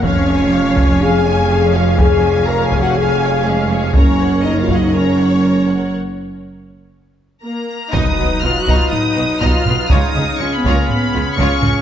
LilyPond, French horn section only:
\new Staff \with { instrumentName = "French horn section" } { \time 4/4 \key des \mixolydian \tempo 4 = 122 des'2 aes'4. f'8 | aes'4 \tuplet 3/2 { bes'8 aes'8 ges'8 } aes'4 aes4 | des'4 \tuplet 3/2 { ees'8 f'8 ees'8 } des'2 | r2. bes4 |
dis'4 \tuplet 3/2 { f'8 fis'8 f'8 } dis'4 f'4 | ees'4 \tuplet 3/2 { des'8 ces'8 bes8 } ces'4 des'4 | }